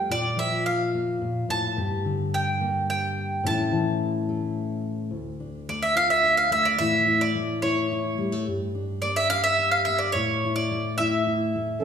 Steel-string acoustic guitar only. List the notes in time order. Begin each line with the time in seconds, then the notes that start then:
Already playing: G3 A3
0.09 A#2 F4
0.36 F3
0.95 A#3
1.22 A#2
1.49 A2
1.77 G2 G4
2.05 D3
2.61 A#3
3.44 A2 E3 A3 C#4 E4
3.71 E3
4.29 A3
5.11 D2
5.40 D4
5.69 A3
5.96 F4
6.23 D4
6.51 A3
6.79 A2 E3 A3 E4
7.07 E4
7.35 A3
7.63 E4
7.92 E4
8.18 G3
8.32 A3
8.47 G2
8.75 D4
9.03 A#3
9.31 G4
9.59 D4
9.88 A#3
10.15 A2
10.45 E4
10.71 A3
11.00 E4
11.27 E4
11.55 A3